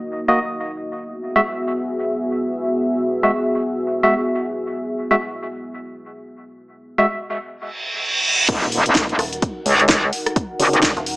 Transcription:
Already playing: analog synth pad A#3 D#4 F#4 D#5
0.28 synth stab A#3 F#4 D#5
0.99 analog synth pad B3 F#4 G#4 E5
1.36 synth stab G#3 F#4 E5
3.23 synth stab G#3 F#4 E5
4.03 synth stab G#3 F#4 E5
5.11 synth stab G#3 F#4 E5
6.98 synth stab G#3 F#4 E5
7.55 reverse cymbal
8.49 wobble bass D#1, analog synth pad D#4 F#4 A#4 F#5, kick, closed hi-hat, crash, impact
8.62 snare
8.72 open hi-hat
8.86 wobble bass D#1, closed hi-hat
8.95 kick, snare, closed hi-hat
9.09 closed hi-hat
9.19 fm bass D#1, cross-stick, open hi-hat
9.33 closed hi-hat
9.42 kick, closed hi-hat
9.66 wobble bass C#2, open hi-hat
9.80 closed hi-hat
9.89 kick, snare, closed hi-hat
10.13 open hi-hat
10.26 cross-stick, closed hi-hat
10.36 kick, closed hi-hat
10.60 wobble bass F#1, open hi-hat
10.73 closed hi-hat
10.82 kick, snare, closed hi-hat
10.97 fm bass D#1, closed hi-hat
11.06 open hi-hat

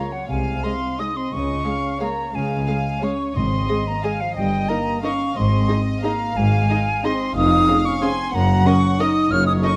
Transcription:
Already playing: french horn section A#3, violin section C#5, flute A#5
0.12 french horn section F#3, flute F#5
0.28 double bass section C2, cello section C3, french horn section G#3, violin section F5, flute G#5
0.63 viola section G#3 G#4, french horn section C4, violin section D#5, flute C6
0.98 viola section G#3 G#4, french horn section D#4, violin section D#5, flute D#6
1.15 french horn section C4, flute C6
1.31 double bass section C#2, cello section C#3, french horn section C#4, flute C#6
1.64 viola section G#3 G#4, violin section F5
2.00 viola section G#3 G#4, french horn section A#3, violin section C#5 F5, flute A#5
2.33 double bass section C#2, cello section C#3, french horn section G#3, violin section F5, flute G#5
2.67 viola section G#3 G#4, violin section F5
3.02 viola section G#3 G#4, french horn section C#4, violin section C#5 F5, flute C#6
3.35 double bass section G#1, cello section G#2, timpani G#2, french horn section C4, violin section D#5, flute C6
3.69 viola section G#3 G#4, violin section D#5
3.88 french horn section A#3, flute A#5
4.03 viola section G#3 G#4, french horn section G#3, violin section D#5 F5, flute G#5
4.21 french horn section F3, flute F5
4.36 double bass section G1, cello section G2, french horn section G3, violin section D#5, flute G5
4.69 french horn section A#3, viola section D#4 A#4, violin section D#5, flute A#5
5.03 french horn section C#4, viola section D#4 A#4, violin section D#5 F5, flute C#6
5.35 double bass section G#1, cello section G#2, french horn section C4, violin section D#5, flute C6
5.68 viola section D#4 G#4, violin section D#5
6.03 french horn section A#3, viola section D#4 G#4, violin section D#5 F5, flute A#5
6.35 double bass section G#1, cello section G#2, french horn section G#3, flute G#5
6.70 viola section D#4 G#4, violin section D#5
7.04 french horn section C4, viola section D#4 G#4, violin section D#5, flute C6
7.35 double bass section F1, cello section F2, french horn section D#4, violin section F5, flute D#6
7.68 viola section C#4 G#4, violin section F5
7.85 french horn section C#4, flute C#6
8.01 french horn section C4, viola section C#4 G#4, violin section F5 G#5, flute C6
8.33 double bass section F#1, cello section F#2, french horn section A#3, violin section F#5, flute A#5
8.65 french horn section C#4, viola section C#4 A#4, violin section D#5, flute C#6
8.99 viola section C#4 A#4, french horn section D#4, violin section D#5, flute D#6
9.31 double bass section F#1, cello section F#2, french horn section F4, violin section C#5, flute F6
9.46 french horn section D#4, flute D#6
9.63 french horn section C#4, viola section D#4 A4, violin section D#5, flute C#6

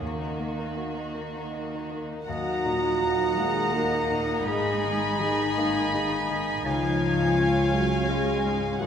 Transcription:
Already playing: harp D#3 A#3 D#4 F#4
0.00 grand piano D#2, double bass section D#2, cello section D#3, violin section A#3 F#4, viola section A#3
0.19 violin section D#4
0.38 violin section A#3, grand piano A#3
0.57 violin section D#4
0.75 violin section A#3, grand piano F#4
0.93 violin section D#4
1.14 violin section A#3, grand piano A#4
1.33 violin section D#4
1.52 violin section A#3, grand piano D#5
1.72 violin section D#4
1.90 violin section A#3, grand piano A#4
2.09 violin section D#4
2.27 double bass section D#2, grand piano D#2, harp D#3, cello section F#3, viola section D#4, french horn section F#4, clarinet D#5, violin section F#5 A#5, oboe A#5
2.65 grand piano A#2, harp D#4
3.03 grand piano D#4 F#4
3.38 cello section G#3, grand piano A#3, harp D#4, french horn section G#4
3.74 cello section A#3, grand piano D#4 F#4, french horn section A#4
4.11 grand piano A#2, harp A#3
4.47 double bass section G#1, harp G#2, grand piano G#2, cello section G#3, french horn section G#4, violin section G#5 B5, oboe B5
4.84 grand piano D#3, harp B3
5.20 cello section D#3, harp D#4, french horn section D#4, grand piano D#4 G#4
5.57 grand piano A#3, harp B3
5.93 harp D#4, grand piano D#4 G#4
6.29 harp D#3, grand piano D#3
6.64 grand piano C#2, double bass section C#2, harp C#3, cello section F3, french horn section F4, clarinet C#5, violin section F5 G#5, oboe G#5
7.00 grand piano G#2, harp C#4
7.38 grand piano C#4 F4, viola section C#4, harp F4
7.73 cello section F#3, grand piano G#3, harp C#4, french horn section F#4
8.09 cello section G#3, grand piano C#4 F4, harp F4, french horn section G#4
8.45 grand piano G#2, harp G#3
8.80 grand piano D#2, double bass section D#2, harp D#3, cello section F#3, viola section A#3, french horn section F#4, clarinet D#5, oboe F#5, violin section F#5

